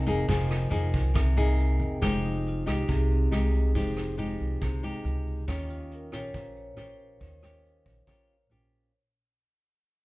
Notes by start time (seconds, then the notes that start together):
Already playing: C3 G#4 A#4 D#5 G5
0.06 F1 A#3 D#4 G#4, closed hi-hat
0.28 F1 F3 A#3 D#4 G#4, kick, closed hi-hat
0.51 cross-stick, closed hi-hat
0.70 F1 A#3 D#4 G#4, closed hi-hat
0.94 C2, kick, closed hi-hat
1.14 C3, kick, cross-stick, closed hi-hat
1.37 A#3 D#4 G#4, closed hi-hat
1.59 closed hi-hat
1.79 F1 G#4 A#4 D#5 G5, closed hi-hat
2.01 F1 F3 G#3 D#4 G4, kick, cross-stick, closed hi-hat
2.24 D#4, closed hi-hat
2.46 F4, closed hi-hat
2.66 C2 G#3 D#4 G4, cross-stick, closed hi-hat
2.88 C2 C3 G#4, kick, closed hi-hat
3.10 C4, closed hi-hat
3.31 C2 G#3 D#4 G4, cross-stick, closed hi-hat
3.54 G#4, closed hi-hat
3.75 F1 F3 G#3 D#4 G4, kick, closed hi-hat
3.97 cross-stick, closed hi-hat
4.18 G#3 D#4 G4, closed hi-hat
4.40 C2, closed hi-hat
4.61 C2 C3, kick, cross-stick, closed hi-hat
4.83 G#3 D#4 G4, closed hi-hat
5.05 C#2, closed hi-hat
5.27 closed hi-hat
5.48 D#2 D#3 C#4 F4 G4, kick, cross-stick, closed hi-hat
5.70 F4, closed hi-hat
5.91 A#4, closed hi-hat
6.12 A#1 C#4 F4 G4 C#5, cross-stick, closed hi-hat
6.34 A#1 A#2 C5, kick, closed hi-hat
6.56 C#5, closed hi-hat
6.76 A#1 C#4 F4 G4, cross-stick, closed hi-hat
6.81 C5
6.94 A#4
6.99 closed hi-hat
7.09 C#5
7.20 D#2 D#3, kick, closed hi-hat
7.42 C#4 F4 G4, cross-stick, closed hi-hat
7.65 closed hi-hat
7.86 A#1, kick, closed hi-hat
8.07 A#1 A#2 C#4 F4 G4, kick, cross-stick, closed hi-hat
8.29 closed hi-hat
8.50 A#1 C#4 F4 G4, closed hi-hat